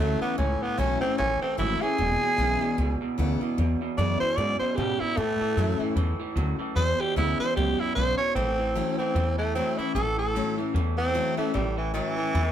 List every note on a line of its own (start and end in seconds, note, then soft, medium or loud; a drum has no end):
0.00 0.21 D2 medium
0.00 0.36 E2 loud
0.00 0.20 A2 medium
0.00 0.21 E3 medium
0.00 0.20 F#3 loud
0.00 0.21 A3 medium
0.00 0.21 C#4 loud
0.00 0.20 E4 medium
0.21 0.37 A2 medium
0.21 0.38 E3 medium
0.21 0.37 B3 loud
0.21 0.39 C#4 medium
0.21 0.38 E4 medium
0.21 muted upright bass stroke medium
0.38 0.61 C#2 medium
0.38 1.15 A2 medium
0.38 0.60 A2 medium
0.38 0.60 E3 medium
0.38 0.63 C#4 medium
0.62 0.77 A2 medium
0.62 0.77 E3 medium
0.62 0.80 B3 loud
0.62 muted upright bass stroke medium
0.78 1.01 B1 medium
0.78 1.00 A2 medium
0.78 1.00 E3 medium
0.78 1.00 F#3 medium
0.78 1.01 A3 loud
0.78 1.00 C#4 medium
0.78 1.01 C#4 medium
0.78 1.01 E4 loud
1.01 1.17 A2 medium
1.01 1.17 E3 medium
1.01 1.17 C4 loud
1.01 1.19 C#4 medium
1.01 1.18 E4 medium
1.18 1.41 A1 medium
1.18 1.95 E2 medium
1.18 1.39 A2 medium
1.18 1.40 E3 medium
1.18 1.41 C#4 loud
1.41 1.57 A2 medium
1.41 1.57 E3 medium
1.41 1.58 C4 medium
1.41 muted upright bass stroke medium
1.57 1.81 G#1 medium
1.57 1.79 A2 medium
1.57 1.80 E3 medium
1.57 1.80 F#3 loud
1.57 1.81 A3 medium
1.57 1.81 C#4 medium
1.57 1.83 E4 loud
1.57 1.80 E4 medium
1.81 1.97 A2 medium
1.81 1.97 E3 medium
1.81 1.98 C#4 medium
1.81 1.97 E4 medium
1.81 2.98 G#4 loud
1.81 muted upright bass stroke medium
1.98 2.21 E1 medium
1.98 2.75 E2 medium
1.98 2.19 E2 medium
1.98 2.20 B2 medium
2.22 2.37 E2 medium
2.22 2.37 B2 medium
2.22 muted upright bass stroke medium
2.37 2.61 B1 medium
2.37 2.59 E2 medium
2.37 2.59 C#3 medium
2.37 2.60 E3 medium
2.37 2.60 G#3 medium
2.37 2.60 B3 medium
2.37 2.60 E4 loud
2.61 2.76 E2 medium
2.61 2.76 B2 medium
2.61 2.78 B3 soft
2.61 2.77 E4 medium
2.78 3.00 C#2 medium
2.78 2.99 E2 medium
2.78 3.54 B2 medium
2.78 2.99 B2 medium
3.01 3.16 E2 medium
3.01 3.16 B2 medium
3.01 muted upright bass stroke medium
3.18 3.41 D2 medium
3.18 3.39 E2 medium
3.18 3.39 C#3 loud
3.18 3.40 E3 medium
3.18 3.40 G#3 medium
3.18 3.41 B3 medium
3.18 3.40 E4 loud
3.41 3.56 E2 medium
3.41 3.56 B2 medium
3.41 3.58 B3 medium
3.41 3.57 E4 medium
3.41 muted upright bass stroke medium
3.58 3.79 E2 medium
3.58 4.34 E2 medium
3.58 3.80 E2 medium
3.58 3.79 B2 medium
3.81 3.96 E2 medium
3.81 3.96 B2 medium
3.81 muted upright bass stroke medium
3.97 4.18 E2 medium
3.97 4.20 F#2 loud
3.97 4.19 C#3 loud
3.97 4.20 E3 medium
3.97 4.20 G#3 medium
3.97 4.21 B3 loud
3.97 4.20 E4 medium
3.97 4.20 D5 loud
4.20 4.36 E2 medium
4.20 4.36 B2 medium
4.20 4.38 B3 medium
4.20 4.37 E4 medium
4.20 4.38 C5 loud
4.20 muted upright bass stroke medium
4.37 4.58 E2 medium
4.37 4.76 F#2 medium
4.37 4.60 G#2 medium
4.37 4.58 B2 loud
4.37 4.59 D5 loud
4.59 4.75 E2 medium
4.59 4.76 B2 loud
4.59 4.78 C5 medium
4.59 muted upright bass stroke medium
4.76 4.98 E2 medium
4.76 5.15 G#2 medium
4.76 5.00 B2 loud
4.76 4.98 C#3 medium
4.76 5.01 G4 medium
5.00 5.15 E2 medium
5.00 5.15 B2 medium
5.00 5.19 E4 loud
5.00 muted upright bass stroke medium
5.17 5.38 A2 medium
5.17 5.40 A2 medium
5.17 5.93 A2 medium
5.17 5.38 E3 medium
5.17 5.94 A3 loud
5.40 5.55 A2 medium
5.40 5.55 E3 medium
5.40 muted upright bass stroke medium
5.57 5.79 F#2 loud
5.57 5.78 A2 medium
5.57 5.79 E3 medium
5.57 5.78 F#3 medium
5.57 5.80 A3 medium
5.57 5.80 C#4 loud
5.57 5.78 E4 medium
5.80 5.95 A2 medium
5.80 5.95 E3 medium
5.80 5.97 C#4 soft
5.80 5.96 E4 medium
5.80 muted upright bass stroke medium
5.96 6.19 E2 loud
5.96 6.35 G#2 medium
5.96 6.17 A2 medium
5.96 6.17 E3 loud
6.19 6.35 A2 medium
6.19 6.35 E3 loud
6.19 muted upright bass stroke medium
6.36 6.59 D2 loud
6.36 6.75 F#2 medium
6.36 6.57 A2 medium
6.36 6.57 F#3 medium
6.59 6.74 A2 medium
6.59 6.74 E3 medium
6.59 muted upright bass stroke medium
6.76 6.97 E2 medium
6.76 6.98 E2 medium
6.76 7.53 E2 loud
6.76 6.97 B2 medium
6.76 7.02 C5 loud
6.99 7.14 E2 medium
6.99 7.14 B2 medium
6.99 7.16 G4 loud
6.99 muted upright bass stroke medium
7.16 7.39 D2 loud
7.16 7.37 E2 loud
7.16 7.37 C#3 loud
7.16 7.38 E3 medium
7.16 7.39 G#3 medium
7.16 7.39 B3 loud
7.16 7.39 E4 loud
7.39 7.54 E2 medium
7.39 7.55 B2 medium
7.39 7.56 E4 medium
7.39 7.56 C5 loud
7.39 muted upright bass stroke medium
7.56 7.79 C#2 medium
7.56 7.77 E2 medium
7.56 7.95 F#2 loud
7.56 7.77 B2 loud
7.56 7.81 G4 loud
7.79 7.94 E2 medium
7.79 7.95 B2 medium
7.79 7.95 E4 loud
7.79 muted upright bass stroke medium
7.95 8.18 B1 loud
7.95 8.17 E2 medium
7.95 8.34 G#2 medium
7.95 8.17 C#3 medium
7.95 8.17 C5 loud
8.18 8.34 E2 medium
8.18 8.34 B2 medium
8.18 8.34 C#5 loud
8.18 muted upright bass stroke medium
8.35 8.79 A1 medium
8.35 8.57 A2 medium
8.35 9.12 A2 medium
8.35 8.57 E3 medium
8.35 8.96 C4 loud
8.59 8.74 A2 medium
8.59 8.74 E3 medium
8.75 8.96 A2 medium
8.75 8.98 E3 medium
8.75 8.96 F#3 medium
8.75 8.98 A3 medium
8.75 8.98 C#4 medium
8.75 8.98 E4 loud
8.98 9.14 A2 medium
8.98 9.14 E3 medium
8.98 9.37 C4 medium
8.98 9.16 C#4 soft
8.98 9.15 E4 medium
8.98 muted upright bass stroke medium
9.15 9.59 E2 medium
9.15 9.92 E2 loud
9.15 9.36 A2 medium
9.15 9.36 E3 loud
9.38 9.53 A2 medium
9.38 9.54 E3 medium
9.38 9.55 A3 loud
9.55 9.76 A2 medium
9.55 9.78 E3 medium
9.55 9.76 F#3 medium
9.55 9.78 A3 medium
9.55 9.80 C4 loud
9.55 9.78 C#4 medium
9.55 9.78 E4 medium
9.78 9.93 A2 medium
9.78 9.93 E3 medium
9.78 9.95 C#4 medium
9.78 9.94 E4 medium
9.78 9.95 E4 medium
9.78 muted upright bass stroke medium
9.95 10.39 A1 medium
9.95 10.16 A2 medium
9.95 10.72 A2 medium
9.95 10.16 E3 medium
9.95 10.17 A4 loud
10.18 10.33 A2 medium
10.18 10.33 E3 medium
10.18 10.57 A4 medium
10.34 10.55 A2 medium
10.34 10.58 E3 medium
10.34 10.56 F#3 loud
10.34 10.58 A3 loud
10.34 10.58 C#4 loud
10.34 10.57 E4 loud
10.57 10.73 A2 medium
10.57 10.73 E3 medium
10.57 10.75 C#4 soft
10.57 10.74 E4 medium
10.57 muted upright bass stroke medium
10.74 11.19 E2 medium
10.74 11.52 E2 medium
10.74 10.95 A2 medium
10.74 10.96 E3 medium
10.98 11.13 A2 medium
10.98 11.13 E3 medium
10.98 11.36 C4 loud
11.14 11.35 A2 medium
11.14 11.37 E3 medium
11.14 11.36 F#3 loud
11.14 11.37 A3 medium
11.14 11.37 C#4 medium
11.14 11.36 E4 medium
11.37 11.53 A2 medium
11.37 11.53 E3 medium
11.37 11.54 A3 loud
11.37 11.54 C#4 medium
11.37 11.54 E4 medium
11.37 muted upright bass stroke medium
11.54 11.99 A1 medium
11.54 11.75 A2 medium
11.54 12.31 A2 medium
11.54 11.75 E3 medium
11.54 11.77 G3 medium
11.77 11.92 A2 medium
11.77 11.93 E3 medium
11.77 11.94 E3 medium
11.94 12.15 A2 medium
11.94 12.16 E3 medium
11.94 12.52 E3 loud
11.94 12.15 F#3 medium
11.94 12.17 A3 medium
11.94 12.17 C#4 medium
11.94 12.16 E4 medium
12.17 12.33 A2 medium
12.17 12.33 E3 medium
12.17 12.34 C#4 medium
12.17 12.33 E4 medium
12.17 muted upright bass stroke medium
12.34 12.52 E2 medium
12.34 12.52 A2 medium
12.34 12.52 E3 medium